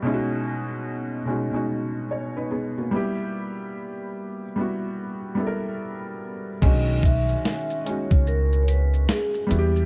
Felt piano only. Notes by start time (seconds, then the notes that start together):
0.02 B2 G#3 C#4 D#4
0.07 E4
0.14 F#4
1.25 B2 G#3 C#4 D#4
1.30 F#4
1.51 B2 G#3 C#4 D#4
1.56 F#4
2.11 C#5
2.37 D#4 B4
2.51 B3 G#4
2.78 A#3 F#4
2.91 G3 B3 E4
2.96 G4
4.56 G3 B3 E4
4.61 F#4
5.35 G3 B3 E4
5.40 A4
5.47 A#4
6.62 G#3 C#4 D4
6.67 F#4
6.71 D#3
7.84 G#3 C#4 D#4
7.89 F#4
9.47 G3 B3 E4
9.52 F#4
9.58 G4